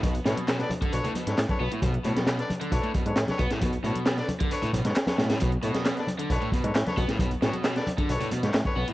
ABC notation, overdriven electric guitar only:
X:1
M:4/4
L:1/16
Q:1/4=134
K:Bdor
V:1 name="Overdriven electric guitar" clef=bass
B,, z B,,2 B,, z2 D, z A,, B,, z3 B, A,, | B,, z B,,2 B,, z2 D, z A,, B,, z3 B, A,, | B,, z B,,2 B,, z2 D, z A,, B,, z3 B,, A,, | B,, z B,,2 B,, z2 D, z A,, B,, z3 B, A,, |
B,, z B,,2 B,, z2 D, z A,, B,, z3 B, A,, |]